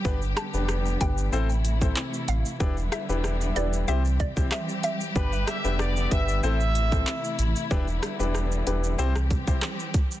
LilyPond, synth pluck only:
\new Staff \with { instrumentName = "Synth pluck" } { \time 4/4 \key e \minor \tempo 4 = 94 r8 a''16 r8. g''8 r4. f''16 r16 | r8 e''16 r8. d''8 e''16 r16 d''16 r16 e''16 r16 e''16 r16 | r1 | r1 | }